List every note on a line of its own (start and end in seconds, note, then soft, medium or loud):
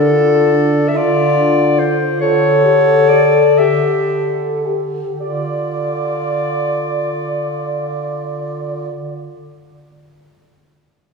0.00 0.81 D3 medium
0.00 0.13 D4 soft
0.00 0.97 D4 soft
0.00 0.90 A4 medium
0.12 0.54 F4 soft
0.53 0.97 D4 soft
0.88 0.98 E5 soft
0.95 2.06 D3 medium
0.95 1.37 F4 soft
0.95 1.91 F4 medium
0.95 1.80 D5 medium
1.37 1.80 D4 soft
1.78 2.20 F4 soft
1.78 2.20 C5 medium
2.20 3.42 D3 medium
2.20 3.61 A4 medium
2.20 2.66 A4 soft
2.20 3.10 C#5 medium
2.64 3.11 G4 soft
3.09 3.60 A4 soft
3.09 3.60 D5 medium
3.58 5.02 D3 soft
3.58 3.96 G4 soft
3.58 4.39 G4 soft
3.58 4.11 E5 medium
4.11 4.68 A4 soft
4.66 5.20 G4 soft
5.19 8.90 D3 soft
5.19 8.91 F4 soft
5.19 8.90 D5 soft
5.19 8.91 D5 soft